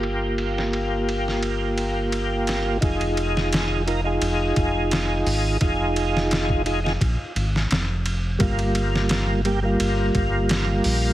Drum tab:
RD |x-x-x-x-x-x-x-x-|xxx-x-x-x-x-x---|x-x-x-x-x-x-x-x-|xxx-x-x-x-x-x---|
HH |----------------|--------------o-|----------------|--------------o-|
SD |---o---o------o-|---oo-------o---|---oo--o---oo---|---oo-------o---|
BD |----------------|o---------o-----|o----o--o-------|o---------o-----|